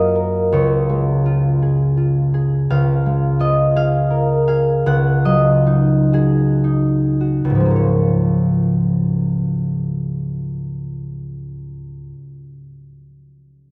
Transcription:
0.00 0.55 F#2 medium
0.00 0.54 A#3 soft
0.00 1.24 F4 soft
0.00 0.55 F#4 medium
0.00 0.14 A#4 medium
0.00 0.52 C#5 medium
0.00 1.03 D#5 medium
0.00 2.69 F5 medium
0.00 0.54 F#5 medium
0.00 0.43 A#5 loud
0.15 0.54 A#4 soft
0.52 2.69 C#2 medium
0.52 4.43 C#5 medium
0.90 3.05 G#3 soft
1.26 1.96 F4 soft
1.62 2.33 G#4 soft
1.97 3.38 F4 soft
2.34 3.75 G#4 soft
2.70 4.85 C#2 medium
2.70 3.75 F5 medium
3.06 6.96 G#3 soft
3.39 4.88 F4 soft
3.39 3.99 D#5 medium
3.76 4.47 G#4 soft
3.76 4.46 F5 medium
4.10 4.88 A#4 soft
4.48 6.12 G#4 soft
4.48 4.88 F5 medium
4.86 7.43 C#2 medium
4.86 7.82 F#5 medium
5.25 7.81 F#3 soft
5.25 7.81 D#5 medium
5.67 6.63 D#4 soft
6.13 7.19 F#4 soft
6.13 10.04 G#4 medium
6.64 7.80 D#4 soft
7.21 7.80 F#4 soft
7.45 12.10 C#2 soft
7.50 12.15 G#2 soft
7.55 12.20 F3 soft
7.60 12.25 G#3 soft
7.65 12.30 A#3 soft
7.71 12.36 C#4 soft
7.76 12.41 C#5 soft

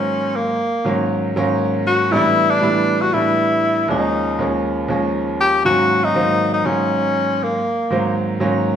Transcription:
0.00 0.54 G#2 medium
0.00 0.54 D#3 medium
0.00 0.54 F#3 medium
0.00 0.54 A#3 medium
0.00 0.37 C#4 medium
0.00 0.55 C5 medium
0.36 1.11 A#3 medium
0.84 1.32 G#2 medium
0.84 1.32 D#3 medium
0.84 1.33 F#3 medium
0.84 1.33 A#3 medium
0.84 1.33 C#4 medium
1.36 2.12 G#2 medium
1.36 2.12 D#3 medium
1.36 2.12 F#3 medium
1.36 2.12 A#3 medium
1.36 2.12 C#4 medium
1.87 2.13 F#4 medium
2.11 2.58 A2 medium
2.11 2.58 E3 medium
2.11 2.59 G3 medium
2.11 2.59 B3 medium
2.11 2.59 D4 medium
2.11 2.52 E4 loud
2.50 3.03 D4 loud
2.61 3.08 A2 medium
2.61 3.09 E3 medium
2.61 3.09 G3 medium
2.61 3.09 B3 medium
2.61 3.10 E4 medium
3.01 3.15 F#4 medium
3.12 3.88 A2 medium
3.12 3.88 E3 soft
3.12 3.88 G3 medium
3.12 3.88 B3 soft
3.12 3.89 D4 medium
3.12 3.89 E4 medium
3.88 4.35 D#2 medium
3.88 4.35 F3 medium
3.88 4.36 G#3 medium
3.88 4.36 A#3 medium
3.88 4.36 C#4 medium
3.88 4.61 D#4 medium
4.39 4.86 D#2 medium
4.39 4.86 F3 medium
4.39 4.86 G#3 medium
4.39 4.86 A#3 medium
4.39 4.86 C#4 medium
4.88 5.64 D#2 medium
4.88 5.64 F3 medium
4.88 5.64 G#3 medium
4.88 5.64 A#3 medium
4.88 5.64 C#4 medium
5.41 5.63 G4 medium
5.64 6.11 G#2 medium
5.64 6.11 D#3 medium
5.64 6.11 F#3 medium
5.64 6.12 A#3 medium
5.64 6.12 C#4 medium
5.64 6.06 F#4 loud
6.04 6.53 D#4 loud
6.14 6.61 G#2 medium
6.14 6.62 D#3 medium
6.14 6.62 F#3 medium
6.14 6.62 A#3 medium
6.14 6.62 C4 medium
6.54 6.67 D#4 medium
6.64 7.58 G#2 medium
6.64 7.58 D#3 medium
6.64 7.59 F#3 medium
6.64 7.59 A#3 medium
6.64 7.44 C#4 medium
6.64 7.59 D#4 medium
7.43 8.17 A#3 medium
7.90 8.37 G#2 medium
7.90 8.37 D#3 medium
7.90 8.38 F#3 medium
7.90 8.38 A#3 medium
7.90 8.38 C4 medium
8.40 8.76 G#2 medium
8.40 8.76 D#3 medium
8.40 8.76 F#3 medium
8.40 8.76 A#3 medium
8.40 8.76 C#4 medium

